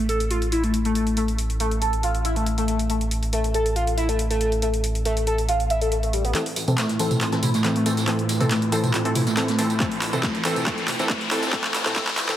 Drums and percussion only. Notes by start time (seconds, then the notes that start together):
0.09 closed hi-hat
0.20 closed hi-hat
0.31 closed hi-hat
0.42 closed hi-hat
0.52 closed hi-hat
0.64 closed hi-hat
0.74 closed hi-hat
0.85 closed hi-hat
0.95 closed hi-hat
1.07 closed hi-hat
1.17 closed hi-hat
1.28 closed hi-hat
1.38 closed hi-hat
1.50 closed hi-hat
1.60 closed hi-hat
1.71 closed hi-hat
1.82 closed hi-hat
1.93 closed hi-hat
2.03 closed hi-hat
2.15 closed hi-hat
2.25 closed hi-hat
2.36 closed hi-hat
2.46 closed hi-hat
2.58 closed hi-hat
2.68 closed hi-hat
2.79 closed hi-hat
2.90 closed hi-hat
3.01 closed hi-hat
3.11 closed hi-hat
3.23 closed hi-hat
3.33 closed hi-hat
3.44 closed hi-hat
3.54 closed hi-hat
3.66 closed hi-hat
3.76 closed hi-hat
3.87 closed hi-hat
3.98 closed hi-hat
4.09 closed hi-hat
4.19 closed hi-hat
4.31 closed hi-hat
4.41 closed hi-hat
4.52 closed hi-hat
4.62 closed hi-hat
4.74 closed hi-hat
4.84 closed hi-hat
4.95 closed hi-hat
5.05 closed hi-hat
5.17 closed hi-hat
5.27 closed hi-hat
5.38 closed hi-hat
5.49 closed hi-hat
5.60 closed hi-hat
5.70 closed hi-hat
5.81 closed hi-hat
5.92 closed hi-hat
6.03 closed hi-hat
6.13 closed hi-hat
6.25 closed hi-hat
6.35 clap, closed hi-hat, tambourine
6.46 open hi-hat
6.56 closed hi-hat, open hi-hat, tambourine
6.68 closed hi-hat, mid tom, tambourine
6.78 snare, clap, closed hi-hat, tambourine
6.89 snare, closed hi-hat
6.99 open hi-hat, tambourine
7.11 closed hi-hat, mid tom, tambourine
7.21 clap, closed hi-hat, tambourine
7.32 snare, closed hi-hat
7.42 closed hi-hat, mid tom, open hi-hat, tambourine
7.54 snare, closed hi-hat, tambourine
7.64 snare, clap, closed hi-hat, tambourine
7.76 closed hi-hat
7.86 closed hi-hat, open hi-hat, tambourine
7.97 snare, closed hi-hat, tambourine
8.08 clap, closed hi-hat, tambourine
8.19 closed hi-hat
8.29 snare, closed hi-hat, open hi-hat, tambourine
8.40 snare, closed hi-hat, mid tom, tambourine
8.50 snare, clap, closed hi-hat, tambourine
8.62 closed hi-hat
8.72 closed hi-hat, open hi-hat, tambourine
8.84 closed hi-hat, mid tom, tambourine
8.94 clap, closed hi-hat, tambourine
9.05 closed hi-hat
9.15 closed hi-hat, mid tom, open hi-hat, tambourine
9.27 snare, closed hi-hat, tambourine
9.37 snare, clap, closed hi-hat, tambourine
9.48 snare, closed hi-hat
9.58 closed hi-hat, open hi-hat, tambourine
9.70 closed hi-hat, tambourine
9.80 kick, clap, closed hi-hat, tambourine
9.92 open hi-hat
10.01 clap, closed hi-hat, open hi-hat, tambourine
10.13 closed hi-hat, mid tom, tambourine
10.23 kick, snare, clap, closed hi-hat
10.34 snare, closed hi-hat
10.45 clap, open hi-hat, tambourine
10.56 closed hi-hat, mid tom, tambourine
10.66 kick, clap, closed hi-hat, tambourine
10.78 snare, closed hi-hat
10.87 clap, closed hi-hat, mid tom, open hi-hat, tambourine
10.99 snare, closed hi-hat, tambourine
11.10 kick, snare, clap, closed hi-hat
11.21 closed hi-hat
11.31 snare, clap, closed hi-hat, open hi-hat, tambourine
11.37 snare, closed hi-hat
11.42 snare, closed hi-hat, tambourine
11.48 snare, closed hi-hat
11.52 kick, clap, closed hi-hat, tambourine
11.64 clap, closed hi-hat
11.74 snare, clap, closed hi-hat, open hi-hat, tambourine
11.86 clap, closed hi-hat, mid tom, tambourine
11.95 kick, snare, clap, closed hi-hat, tambourine
12.07 clap, open hi-hat
12.18 clap, open hi-hat, tambourine
12.29 clap, closed hi-hat, mid tom, tambourine